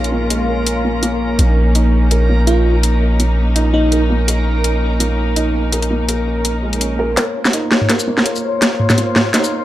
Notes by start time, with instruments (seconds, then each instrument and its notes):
Already playing: 808-style bass A#1, felt piano G#3 A#3 D#4 A#4, string section A#3 C#4 F4, synth texture A#4
0.04 closed hi-hat
0.12 felt piano A#3
0.30 felt piano G#3, closed hi-hat
0.67 closed hi-hat
0.84 felt piano A#3
1.03 felt piano A#3, closed hi-hat
1.39 808-style bass A#1, felt piano A#3, string section D#4, closed hi-hat
1.75 felt piano D#4, closed hi-hat
2.11 felt piano A#4, closed hi-hat
2.29 felt piano A#3
2.47 fm electric piano F4, felt piano A#4, closed hi-hat
2.83 closed hi-hat
3.20 felt piano A#3, closed hi-hat
3.56 felt piano D#4, closed hi-hat
3.74 fm electric piano D#4
3.92 felt piano A#4, closed hi-hat
4.10 felt piano A#3
4.28 felt piano A#4, closed hi-hat
4.64 closed hi-hat
5.00 felt piano A#3, closed hi-hat
5.36 felt piano D#4, closed hi-hat
5.72 felt piano A#4, closed hi-hat
5.82 closed hi-hat
5.91 felt piano A#3
6.09 felt piano A#4, closed hi-hat
6.45 closed hi-hat
6.63 felt piano G#3
6.73 closed hi-hat
6.81 felt piano C#4, closed hi-hat
6.99 felt piano A#4
7.17 felt piano A#3, string section A#3 F4 C5 C#5, snare, closed hi-hat
7.45 snare, shaker
7.53 felt piano D#4, closed hi-hat
7.72 snare
7.82 mid tom
7.89 felt piano A#4, snare, closed hi-hat
8.00 shaker
8.07 felt piano A#3
8.18 snare
8.25 felt piano A#4, closed hi-hat
8.36 shaker
8.62 snare, closed hi-hat
8.80 mid tom
8.90 snare, mid tom, shaker
8.98 felt piano A#3, closed hi-hat
9.16 snare, mid tom
9.34 felt piano D#4, snare, closed hi-hat
9.44 shaker